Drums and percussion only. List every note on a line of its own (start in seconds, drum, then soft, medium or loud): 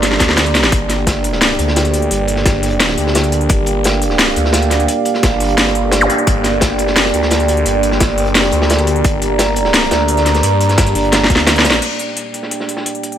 0.03 snare medium
0.03 closed hi-hat medium
0.12 snare medium
0.20 kick medium
0.20 snare medium
0.20 closed hi-hat medium
0.29 snare medium
0.37 snare loud
0.37 snare medium
0.37 closed hi-hat medium
0.46 closed hi-hat soft
0.55 snare loud
0.55 closed hi-hat medium
0.64 snare medium
0.64 closed hi-hat soft
0.72 kick loud
0.72 closed hi-hat loud
0.72 closed hi-hat medium
0.89 snare soft
0.89 closed hi-hat medium
1.07 kick medium
1.07 snare loud
1.07 closed hi-hat loud
1.07 closed hi-hat medium
1.24 closed hi-hat medium
1.33 snare soft
1.41 snare loud
1.41 closed hi-hat medium
1.50 snare soft
1.59 closed hi-hat medium
1.68 snare medium
1.76 snare loud
1.76 closed hi-hat loud
1.76 closed hi-hat medium
1.85 closed hi-hat soft
1.94 closed hi-hat medium
2.02 closed hi-hat soft
2.11 closed hi-hat loud
2.11 closed hi-hat medium
2.28 closed hi-hat medium
2.36 snare soft
2.46 kick loud
2.46 snare loud
2.46 closed hi-hat loud
2.46 closed hi-hat medium
2.63 closed hi-hat medium
2.63 open hi-hat medium
2.71 closed hi-hat soft
2.80 snare loud
2.80 closed hi-hat medium
2.89 snare medium
2.98 closed hi-hat medium
3.07 snare medium
3.15 snare loud
3.15 closed hi-hat loud
3.15 closed hi-hat medium
3.24 closed hi-hat soft
3.32 closed hi-hat medium
3.41 closed hi-hat soft
3.49 kick loud
3.49 closed hi-hat medium
3.66 closed hi-hat medium
3.84 snare loud
3.84 closed hi-hat medium
4.02 closed hi-hat medium
4.10 snare soft
4.19 snare loud
4.19 closed hi-hat medium
4.28 snare soft
4.36 closed hi-hat medium
4.45 snare medium
4.53 snare loud
4.53 closed hi-hat medium
4.53 closed hi-hat loud
4.62 closed hi-hat soft
4.71 snare soft
4.71 closed hi-hat medium
4.80 closed hi-hat soft
4.88 closed hi-hat medium
5.05 closed hi-hat medium
5.14 snare soft
5.23 kick loud
5.23 snare loud
5.23 closed hi-hat medium
5.40 closed hi-hat medium
5.40 open hi-hat medium
5.49 closed hi-hat soft
5.58 snare loud
5.58 closed hi-hat medium
5.67 snare soft
5.75 closed hi-hat medium
5.92 snare loud
5.92 closed hi-hat medium
6.01 closed hi-hat soft
6.10 closed hi-hat medium
6.18 closed hi-hat soft
6.27 kick loud
6.27 closed hi-hat medium
6.44 snare soft
6.44 closed hi-hat medium
6.61 kick medium
6.61 snare loud
6.61 closed hi-hat loud
6.61 closed hi-hat medium
6.79 closed hi-hat medium
6.87 snare soft
6.96 snare loud
6.96 closed hi-hat medium
7.05 snare soft
7.14 closed hi-hat medium
7.23 snare medium
7.30 snare loud
7.30 closed hi-hat medium
7.40 closed hi-hat soft
7.48 closed hi-hat medium
7.57 closed hi-hat soft
7.66 closed hi-hat medium
7.83 closed hi-hat medium
7.92 snare soft
8.00 kick loud
8.00 snare loud
8.00 closed hi-hat medium
8.18 closed hi-hat medium
8.18 open hi-hat medium
8.27 closed hi-hat soft
8.35 snare loud
8.35 closed hi-hat medium
8.44 snare soft
8.52 closed hi-hat medium
8.62 snare medium
8.70 snare loud
8.70 closed hi-hat medium
8.79 closed hi-hat soft
8.87 closed hi-hat medium
8.96 closed hi-hat soft
9.04 kick loud
9.04 closed hi-hat medium
9.22 closed hi-hat medium
9.39 snare loud
9.39 closed hi-hat medium
9.56 closed hi-hat medium
9.65 snare soft
9.74 snare loud
9.74 closed hi-hat medium
9.83 snare soft
9.91 snare loud
9.91 closed hi-hat medium
10.08 closed hi-hat medium
10.17 snare soft
10.17 closed hi-hat soft
10.26 snare soft
10.26 closed hi-hat medium
10.35 snare soft
10.35 closed hi-hat soft
10.43 closed hi-hat medium
10.61 closed hi-hat medium
10.69 snare soft
10.69 closed hi-hat soft
10.78 kick loud
10.78 snare loud
10.78 closed hi-hat medium
10.78 closed hi-hat loud
10.87 closed hi-hat soft
10.95 closed hi-hat medium
10.95 open hi-hat medium
11.05 closed hi-hat soft
11.12 snare medium
11.12 closed hi-hat medium
11.24 snare medium
11.30 kick medium
11.30 closed hi-hat medium
11.36 snare medium
11.47 snare loud
11.47 snare medium
11.47 closed hi-hat loud
11.56 snare loud
11.56 closed hi-hat soft
11.64 snare loud
11.64 closed hi-hat medium
11.70 snare loud
11.70 closed hi-hat soft
11.82 closed hi-hat medium
11.82 crash medium
11.99 closed hi-hat medium
12.16 closed hi-hat medium
12.34 closed hi-hat medium
12.43 snare soft
12.51 closed hi-hat medium
12.60 snare soft
12.68 closed hi-hat medium
12.77 snare soft
12.86 closed hi-hat medium
12.95 closed hi-hat soft
13.03 closed hi-hat medium
13.12 closed hi-hat soft